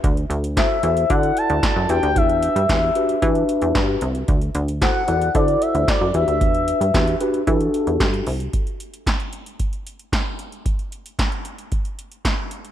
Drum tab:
HH |xxxxx-xxxxxxx-xx|xxxxx-xxxxxxx-xx|xxxxx-xxxxxxx-xx|xxxxxxxxxxxxxxox|
CP |----x-------x---|----x-------x---|----x-------x---|----x-------x---|
SD |----o-------o---|----o-------o---|----o-------o---|----o-------o---|
BD |o---o---o---o---|o---o---o---o---|o---o---o---o---|o---o---o---o---|

HH |xxxxxxxxxxxxx-xx|xxxxxxxxxxxxx-xx|
CP |----x-------x---|----x-------x---|
SD |----o-------o---|----o-------o---|
BD |o---o---o---o---|o---o---o---o---|